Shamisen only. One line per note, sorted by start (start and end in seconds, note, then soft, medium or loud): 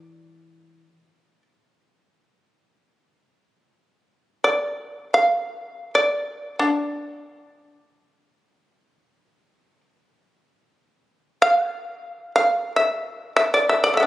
0.00 1.42 D5 medium
4.44 5.10 D5 medium
5.14 5.90 F5 medium
5.95 6.55 D5 medium
6.59 9.81 D4 medium
11.42 11.71 F5 medium
11.71 12.31 A5 medium
12.36 12.72 F5 medium
12.76 13.32 E5 medium
13.36 13.53 E5 medium
13.54 13.69 D5 medium
13.69 13.83 E5 medium
13.84 13.96 D5 medium
13.94 14.00 A3 soft
13.94 14.06 E5 medium
14.00 14.06 B3 soft
14.00 14.06 D4 soft